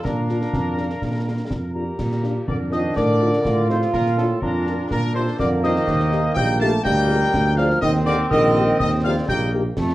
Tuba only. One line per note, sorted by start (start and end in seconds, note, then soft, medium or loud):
0.05 0.45 A#2 medium
0.53 0.94 F2 medium
1.02 1.42 A#2 medium
1.51 1.91 F2 medium
1.99 2.39 A#2 medium
2.47 2.88 F2 medium
2.96 3.33 A2 medium
3.45 3.85 A2 medium
3.94 4.34 A#2 medium
4.42 4.82 F2 medium
4.91 5.31 A#2 medium
5.40 5.80 F2 medium
5.88 6.28 D#2 medium
6.37 6.77 A#1 medium
6.84 7.25 D2 medium
7.34 7.74 D2 medium
7.83 8.23 D#2 medium
8.31 8.71 A#1 loud
8.80 9.20 D#2 medium
9.29 9.69 A#1 loud
9.76 9.95 F2 loud